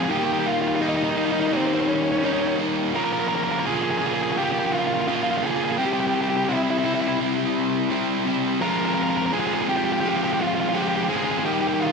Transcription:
0.04 lead electric guitar G#4
0.09 overdriven electric guitar D#3 G3 A#3 D#4, lead electric guitar G4
0.18 lead electric guitar G4
0.25 lead electric guitar G4
0.33 lead electric guitar G4
0.39 lead electric guitar G4
0.46 lead electric guitar F4
0.53 lead electric guitar F4
0.62 lead electric guitar F4
0.68 lead electric guitar F4
0.76 lead electric guitar F4
0.80 overdriven electric guitar D#3 G3 A#3 D#4, lead electric guitar D#4
0.89 lead electric guitar D#4
0.97 lead electric guitar D#4
1.04 lead electric guitar D#4
1.11 lead electric guitar D#4
1.16 overdriven electric guitar D#3 G3 A#3 D#4, lead electric guitar D#4
1.26 lead electric guitar D#4
1.32 lead electric guitar D#4
1.41 lead electric guitar D#4
1.48 lead electric guitar D#4
1.52 overdriven electric guitar D#3 G3 A#3 D#4, lead electric guitar C4
1.60 lead electric guitar C4
1.67 lead electric guitar C4
1.74 lead electric guitar C4
1.81 lead electric guitar C4
1.89 lead electric guitar C#4
1.95 lead electric guitar C#4
2.03 lead electric guitar C#4
2.12 lead electric guitar C#4
2.18 lead electric guitar C#4
2.23 overdriven electric guitar D#3 G3 A#3 D#4, lead electric guitar C#4
2.33 lead electric guitar C#4
2.41 lead electric guitar C#4
2.48 lead electric guitar C#4
2.58 overdriven electric guitar D#3 G3 A#3 D#4
2.94 overdriven electric guitar C#3 F3 A#3 F4, lead electric guitar A#4
3.04 lead electric guitar A#4
3.13 lead electric guitar A#4
3.20 lead electric guitar A#4
3.28 lead electric guitar A#4
3.35 lead electric guitar A#4
3.44 lead electric guitar A#4
3.52 lead electric guitar A#4
3.59 lead electric guitar A#4
3.65 overdriven electric guitar C#3 F3 A#3 F4, lead electric guitar G#4
3.75 lead electric guitar G#4
3.82 lead electric guitar G#4
3.91 lead electric guitar G#4
3.98 overdriven electric guitar C#3 F3 A#3, lead electric guitar G#4
4.02 overdriven electric guitar F4
4.07 lead electric guitar G#4
4.14 lead electric guitar G#4
4.23 lead electric guitar G#4
4.32 lead electric guitar G#4
4.37 overdriven electric guitar C#3 F3 A#3 F4, lead electric guitar G4
4.44 lead electric guitar G4
4.52 lead electric guitar G4
4.60 lead electric guitar G4
4.66 lead electric guitar G4
4.72 lead electric guitar F4
4.79 lead electric guitar F4
4.87 lead electric guitar F4
4.94 lead electric guitar F4
5.01 lead electric guitar F4
5.07 overdriven electric guitar C#3 F3 A#3 F4, lead electric guitar F4
5.16 lead electric guitar F4
5.23 lead electric guitar F4
5.31 lead electric guitar F4
5.37 lead electric guitar F4
5.43 overdriven electric guitar C#3 F3 A#3 F4, lead electric guitar G#4
5.51 lead electric guitar G#4
5.57 lead electric guitar G#4
5.65 lead electric guitar G#4
5.72 lead electric guitar G#4
5.77 overdriven electric guitar C3 G3 C4 E4, lead electric guitar G4
5.86 lead electric guitar G4
5.93 lead electric guitar G4
6.00 lead electric guitar G4
6.07 lead electric guitar G4
6.15 lead electric guitar G4
6.22 lead electric guitar G4
6.29 lead electric guitar G4
6.37 lead electric guitar G4
6.45 overdriven electric guitar C3, lead electric guitar G4
6.49 overdriven electric guitar G3 C4 E4, lead electric guitar E4
6.56 lead electric guitar E4
6.63 lead electric guitar E4
6.70 lead electric guitar E4
6.79 lead electric guitar E4
6.84 overdriven electric guitar C3 G3 C4 E4, lead electric guitar E4
6.94 lead electric guitar E4
7.01 lead electric guitar E4
7.08 lead electric guitar E4
7.20 overdriven electric guitar C3 G3 C4 E4
7.90 overdriven electric guitar C3 G3 C4 E4
8.25 overdriven electric guitar C3 G3 C4 E4
8.61 overdriven electric guitar F3 G#3 C4 F4, lead electric guitar A#4
8.70 lead electric guitar A#4
8.77 lead electric guitar A#4
8.86 lead electric guitar A#4
8.95 lead electric guitar A#4
9.03 lead electric guitar A#4
9.10 lead electric guitar A#4
9.17 lead electric guitar A#4
9.26 lead electric guitar A#4
9.32 overdriven electric guitar F3 G#3 C4 F4, lead electric guitar G#4
9.40 lead electric guitar G#4
9.47 lead electric guitar G#4
9.54 lead electric guitar G#4
9.62 lead electric guitar G#4
9.67 overdriven electric guitar F3 G#3 C4 F4, lead electric guitar G4
9.77 lead electric guitar G4
9.85 lead electric guitar G4
9.92 lead electric guitar G4
10.00 overdriven electric guitar F3 G#3 C4 F4, lead electric guitar G4
10.09 lead electric guitar G4
10.17 lead electric guitar G4
10.24 lead electric guitar G4
10.33 lead electric guitar G4
10.39 lead electric guitar F4
10.47 lead electric guitar F4
10.55 lead electric guitar F4
10.61 lead electric guitar F4
10.69 lead electric guitar F4
10.73 overdriven electric guitar F3 G#3 C4 F4, lead electric guitar G4
10.82 lead electric guitar G4
10.88 lead electric guitar G4
10.96 lead electric guitar G4
11.03 lead electric guitar G4
11.09 overdriven electric guitar F3 G#3 C4 F4, lead electric guitar G#4
11.17 lead electric guitar G#4
11.24 lead electric guitar G#4
11.31 lead electric guitar G#4
11.39 lead electric guitar G#4
11.44 overdriven electric guitar D#3 G3 A#3 D#4, lead electric guitar G4
11.54 lead electric guitar G4
11.61 lead electric guitar G4
11.68 lead electric guitar G4
11.74 lead electric guitar G4
11.80 lead electric guitar F4
11.87 lead electric guitar F4

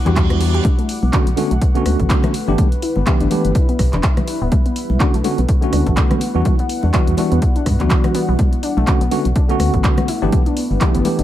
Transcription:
Already playing: ambient pad G3 E4 F#5 D6, reverse cymbal
0.05 fm bass E2, tine electric piano E3 G3 B3 D4 F#4, synth pluck G4, clap, closed hi-hat, low conga
0.16 kick, clap, closed hi-hat
0.30 synth pluck E4, cross-stick, closed hi-hat, high conga, low conga
0.41 synth pluck F#4, open hi-hat
0.54 synth pluck G4, closed hi-hat
0.64 ambient pad D3 A3 B4 F#5, synth pluck D4, kick, closed hi-hat, high conga
0.79 synth pluck A3, closed hi-hat
0.89 open hi-hat
1.03 fm bass B1, synth pluck B3, high conga
1.12 tine electric piano D3 A3 B3 C#4 F#4, kick, clap, closed hi-hat
1.27 fm bass B1, closed hi-hat
1.37 tine electric piano D3 A3 B3 C#4 F#4, synth pluck D4, open hi-hat, high conga
1.51 fm bass B1, synth pluck A3, closed hi-hat
1.61 kick, closed hi-hat
1.74 tine electric piano D3 A3 B3 C#4 F#4, synth pluck B3, closed hi-hat
1.86 fm bass D2, cross-stick, open hi-hat, high conga
2.00 fm bass A1, kick, closed hi-hat, low conga
2.10 synth pluck D4, kick, clap, closed hi-hat
2.23 synth pluck A3, cross-stick, closed hi-hat, high conga, low conga
2.34 ambient pad G3 E4 E5, open hi-hat
2.47 fm bass G1, tine electric piano E3 A3 B3 D4 G4, synth pluck D4
2.58 kick, closed hi-hat, high conga
2.72 closed hi-hat
2.82 synth pluck E4, open hi-hat
2.96 fm bass G1, synth pluck B3, high conga
3.06 tine electric piano E3 A3 B3 D4 G4, kick, clap, closed hi-hat
3.20 fm bass G1, synth pluck D4, closed hi-hat
3.30 tine electric piano E3 A3 B3 D4 G4, open hi-hat, high conga
3.45 fm bass G1, closed hi-hat
3.55 synth pluck E4, kick, closed hi-hat
3.69 synth pluck B3, closed hi-hat
3.79 fm bass B1, kick, cross-stick, open hi-hat, high conga
3.93 fm bass E1, synth pluck D4, clap, closed hi-hat, low conga
4.03 kick, clap, closed hi-hat
4.17 cross-stick, closed hi-hat, high conga, low conga
4.28 synth pluck E4, open hi-hat
4.41 fm bass D1, synth pluck B3
4.52 ambient pad A3 F#5, kick, closed hi-hat, high conga
4.66 synth pluck B3, closed hi-hat
4.76 open hi-hat
4.90 fm bass B1, high conga
5.00 tine electric piano D3 A3 B3 C#4 F#4, synth pluck D4, kick, clap, closed hi-hat
5.14 fm bass B1, synth pluck A3, closed hi-hat
5.24 tine electric piano D3 A3 B3 C#4 F#4, open hi-hat, high conga
5.38 fm bass B1, synth pluck B3, closed hi-hat
5.49 kick, closed hi-hat
5.61 tine electric piano D3 A3 B3 C#4 F#4, closed hi-hat
5.73 fm bass D2, synth pluck D4, cross-stick, open hi-hat, high conga
5.87 fm bass A1, synth pluck A3, kick, closed hi-hat, low conga
5.97 kick, clap, closed hi-hat
6.11 synth pluck B3, cross-stick, closed hi-hat, high conga, low conga
6.21 ambient pad G3 E4 D5, open hi-hat
6.34 fm bass E2, tine electric piano E3 G3 B3 D4 F#4
6.45 synth pluck E4, kick, closed hi-hat, high conga
6.59 synth pluck B3, closed hi-hat
6.69 open hi-hat
6.83 fm bass E2, synth pluck D4, high conga
6.93 tine electric piano E3 G3 B3 D4 F#4, kick, clap, closed hi-hat
7.07 fm bass E2, closed hi-hat
7.17 tine electric piano E3 G3 B3 D4 F#4, synth pluck E4, open hi-hat, high conga
7.32 fm bass E2, synth pluck B3, closed hi-hat
7.42 kick, closed hi-hat
7.56 synth pluck D4, closed hi-hat
7.66 fm bass G2, synth pluck B3, kick, cross-stick, open hi-hat, high conga
7.79 fm bass D2, tine electric piano E3 G3 B3 D4 F#4, clap, closed hi-hat, low conga
7.90 synth pluck F#4, kick, clap, closed hi-hat
8.04 synth pluck F#4, cross-stick, closed hi-hat, high conga, low conga
8.15 synth pluck B3, open hi-hat
8.28 fm bass B1, synth pluck B3
8.39 ambient pad A3 B3 B4, kick, closed hi-hat, high conga
8.53 closed hi-hat
8.63 synth pluck D4, open hi-hat
8.77 fm bass B1, synth pluck A3, high conga
8.87 tine electric piano D3 A3 B3 C#4 F#4, kick, clap, closed hi-hat
9.01 fm bass B1, synth pluck B3, closed hi-hat
9.11 tine electric piano D3 A3 B3 C#4 F#4, open hi-hat, high conga
9.25 fm bass B1, closed hi-hat
9.36 synth pluck D4, kick, closed hi-hat
9.48 tine electric piano D3 A3 B3 C#4 F#4, synth pluck A3, closed hi-hat
9.59 fm bass D2, cross-stick, open hi-hat, high conga
9.74 fm bass A1, synth pluck B3, kick, closed hi-hat, low conga
9.84 kick, clap, closed hi-hat
9.98 cross-stick, closed hi-hat, high conga, low conga
10.08 ambient pad G3 E5, synth pluck E4, open hi-hat
10.22 fm bass G1, tine electric piano E3 A3 B3 D4 G4, synth pluck B3
10.32 kick, closed hi-hat, high conga
10.46 synth pluck D4, closed hi-hat
10.57 open hi-hat
10.71 fm bass G1, high conga
10.80 tine electric piano E3 A3 B3 D4 G4, synth pluck E4, kick, clap, closed hi-hat
10.95 fm bass G1, synth pluck B3, closed hi-hat
11.05 tine electric piano E3 A3 B3 D4 G4, open hi-hat, high conga
11.19 fm bass G1, synth pluck D4, closed hi-hat

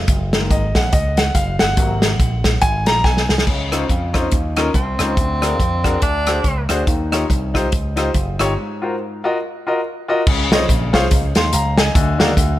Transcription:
0.08 slap bass F#1, kick, closed hi-hat
0.33 grand piano D#3 G#3 A#3, snare, closed hi-hat
0.50 slap bass G#1, grand piano D#5, kick, closed hi-hat
0.75 slap bass A#1, grand piano F#5, kick, snare, closed hi-hat
0.92 slap bass C#2, grand piano D#5, kick, closed hi-hat
1.17 grand piano F#5, snare, closed hi-hat
1.35 slap bass F#1, grand piano F5, kick, closed hi-hat
1.59 slap bass G1, grand piano F#5, snare, closed hi-hat
1.77 slap bass G#1, grand piano C3 F#3 A#3, kick, closed hi-hat
2.02 snare, closed hi-hat
2.20 slap bass A#1, kick, closed hi-hat
2.44 kick, snare, closed hi-hat
2.61 slap bass G#1, grand piano G#5, kick, closed hi-hat
2.86 slap bass A#1, grand piano A#5, snare, closed hi-hat
3.04 slap bass B1, grand piano G#5, kick, snare
3.17 snare
3.29 slap bass C2, snare
3.38 snare
3.47 slap bass C#2, grand piano C#3, kick, crash
3.72 grand piano C#4 D#4 F4 C5, cross-stick, closed hi-hat
3.89 slap bass F2, kick, closed hi-hat
4.13 grand piano C#4 D#4 F4 C5, kick, cross-stick, closed hi-hat
4.31 slap bass D#2, kick, closed hi-hat
4.56 grand piano C#4 D#4 F4 A#4, cross-stick, closed hi-hat
4.74 slap bass C2, tenor saxophone C4, kick, closed hi-hat
4.99 slap bass C#2, grand piano C#4 D#4 F4 C5, cross-stick, closed hi-hat
5.17 slap bass D2, grand piano D3, kick, closed hi-hat
5.41 grand piano D4 F#4 G#4 A#4, cross-stick, closed hi-hat
5.59 slap bass F2, kick, closed hi-hat
5.84 grand piano D4 F#4 G#4 A#4, kick, cross-stick, closed hi-hat
6.02 slap bass D2, tenor saxophone D4, kick, closed hi-hat
6.26 grand piano D4 F#4 G#4 C5, cross-stick, closed hi-hat
6.44 slap bass C#2, kick, closed hi-hat
6.69 slap bass D2, grand piano D4 F#4 G#4 C5, cross-stick, closed hi-hat
6.87 slap bass D#2, grand piano D#3, kick, closed hi-hat
7.12 grand piano D#4 F4 G4 C#5, cross-stick, closed hi-hat
7.30 slap bass C2, kick, closed hi-hat
7.54 grand piano D#4 F4 G4 C5, kick, cross-stick, closed hi-hat
7.72 slap bass C#2, kick, closed hi-hat
7.96 grand piano D#4 F4 G4 C5, cross-stick, closed hi-hat
8.14 slap bass F#1, kick, closed hi-hat
8.39 slap bass G1, grand piano D#4 F4 G4 C#5, cross-stick, closed hi-hat
8.58 grand piano G#2
8.82 grand piano F4 F#4 A#4 C5
9.24 grand piano F4 F#4 A#4 D#5
9.67 grand piano F4 F#4 A#4 D#5
10.08 grand piano F4 F#4 A#4 D#5
10.27 slap bass C#2, grand piano C#3, kick, crash
10.51 slap bass C2, grand piano F4 G#4 C5 C#5 D#5, snare, closed hi-hat
10.69 slap bass A#1, kick, closed hi-hat
10.93 slap bass C2, grand piano F4 G#4 C5 C#5 F5, kick, snare, closed hi-hat
11.11 slap bass C#2, kick, closed hi-hat
11.35 slap bass D#2, grand piano F5 C6, snare, closed hi-hat
11.53 slap bass C#2, grand piano F5 A#5, closed hi-hat
11.78 grand piano D#5 G#5, snare, closed hi-hat
11.95 slap bass D2, grand piano D3, kick, closed hi-hat
12.19 slap bass D#2, grand piano F#4 G#4 A#4 D5 F5, snare, closed hi-hat
12.37 slap bass D2, kick, closed hi-hat

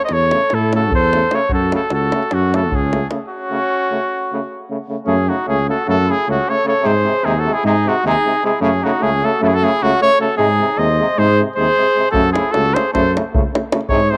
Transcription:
0.03 flugelhorn C5, cornet D#5
0.09 tuba E2, flugelhorn A4, davul high
0.13 cornet C#5
0.31 trombone C#3, euphonium A3, davul high
0.41 davul high
0.50 tuba A2, davul high
0.54 flugelhorn E4, cornet A4
0.73 trombone C#3, euphonium A3, flugelhorn F#4, cornet A4, davul high
0.91 tuba E2, flugelhorn A4, cornet C5, davul low
1.13 trombone C#3, euphonium A3, davul high
1.31 trombone C#3, euphonium A3, flugelhorn A4, cornet C#5, davul high
1.49 tuba F#2, flugelhorn F#4, davul low
1.53 cornet A4
1.71 trombone C#3, euphonium A3, flugelhorn F#4, davul high
1.75 cornet A4
1.90 tuba C#2, flugelhorn F#4, cornet A4, davul high
2.12 trombone C#3, euphonium A3, davul high
2.23 davul high
2.31 tuba F#2, flugelhorn C#4, cornet F#4, davul high
2.54 trombone C#3, euphonium A3, flugelhorn F#4, cornet A4, davul high
2.71 tuba C#2, flugelhorn C#4, cornet G#4, davul low
2.92 trombone C#3, euphonium A3, davul high
3.10 trombone C#3, euphonium A3, davul high
3.27 flugelhorn C#4, cornet F#4
3.50 trombone C#3, euphonium A3
3.91 trombone C#3, euphonium A3
4.32 trombone C#3, euphonium A3
4.70 trombone C#3, euphonium A3
4.89 trombone C#3, euphonium A3
5.05 tuba F#2, trombone C#3, euphonium A3, flugelhorn C#4, cornet G#4
5.28 trombone C#3, euphonium A3, flugelhorn D#4, cornet F#4
5.46 tuba C#2, trombone C#3, euphonium A3, flugelhorn C#4, cornet G#4
5.68 trombone C#3, euphonium A3, flugelhorn F#4, cornet A4
5.85 tuba F#2, trombone C#3, euphonium A3, flugelhorn F#4
5.89 cornet A4
6.08 trombone C#3, euphonium A3, flugelhorn E4, cornet G#4
6.27 tuba C#2, trombone C#3, euphonium A3, flugelhorn C#4, cornet F#4
6.47 trombone C#3, euphonium A3, flugelhorn A4, cornet C#5
6.64 trombone C#3, euphonium A3, flugelhorn A4, cornet C#5
6.82 tuba G#2, trombone C3, euphonium G#3, flugelhorn G#4
6.86 cornet C5
7.04 trombone C3, euphonium G#3
7.24 tuba D#2, trombone C3, euphonium G#3, flugelhorn D#4, cornet G#4
7.37 flugelhorn F#4, cornet A4
7.45 trombone C3, euphonium G#3
7.53 flugelhorn E4, cornet G#4
7.64 tuba G#2, trombone C3, euphonium G#3, flugelhorn D#4, cornet G#4
7.86 trombone C3, euphonium G#3, flugelhorn D#4, cornet F#4
8.04 tuba D#2, trombone C3, euphonium G#3, flugelhorn D#4, cornet G#4
8.24 trombone C3, euphonium G#3
8.44 trombone C3, euphonium G#3, flugelhorn E4, cornet G#4
8.61 tuba F#2, trombone C#3, euphonium A3, flugelhorn C#4, cornet G#4
8.83 trombone C#3, euphonium A3, flugelhorn D#4, cornet F#4
9.01 tuba C#2, trombone C#3, euphonium A3, flugelhorn C#4, cornet G#4
9.22 trombone C#3, euphonium A3, flugelhorn F#4, cornet A4
9.40 tuba F#2, trombone C#3, euphonium A3, flugelhorn E4 F#4, cornet A4
9.48 cornet G#4
9.52 flugelhorn F#4, cornet A4
9.62 trombone C#3, euphonium A3, flugelhorn E4, cornet G#4
9.82 tuba C#2, trombone C#3, euphonium A3, flugelhorn C#4, cornet F#4
10.01 trombone C#3, euphonium A3, flugelhorn A4, cornet C#5
10.19 trombone C#3, euphonium A3, flugelhorn F#4, cornet A4
10.37 tuba G#2, trombone C3, euphonium G#3, flugelhorn D#4, cornet G#4
10.58 trombone C3, euphonium G#3
10.78 tuba D#2, trombone C3, euphonium G#3, flugelhorn C5, cornet D#5
10.98 trombone C3, euphonium G#3
11.16 tuba G#2, trombone C3, euphonium G#3, flugelhorn G#4, cornet C5
11.39 trombone C3, euphonium G#3
11.56 tuba D#2, trombone C3, euphonium G#3, flugelhorn G#4, cornet C5
11.76 trombone C3, euphonium G#3
11.95 trombone C3, euphonium G#3
12.11 tuba F#2, trombone C#3, euphonium A3, flugelhorn F#4, cornet A4, davul low
12.24 davul high
12.33 trombone C#3, euphonium A3, flugelhorn E4, cornet G#4, davul high
12.51 tuba C#2, trombone C#3, euphonium A3, flugelhorn F#4, cornet A4, davul high
12.66 davul high
12.74 trombone C#3, euphonium A3, flugelhorn G#4, cornet C5, davul high
12.93 tuba F#2, trombone C#3, euphonium A3, flugelhorn A4, cornet C5, davul high, davul low
13.15 trombone C#3, euphonium A3, davul high
13.33 tuba C#2, trombone C#3, euphonium A3, davul low
13.54 trombone C#3, euphonium A3, davul high
13.72 trombone C#3, euphonium A3, davul high
13.81 davul high
13.89 tuba G#2, trombone C3, euphonium G#3, flugelhorn G#4, cornet C#5, davul low
14.00 davul high
14.10 trombone C3, euphonium G#3, flugelhorn G#4, cornet C5

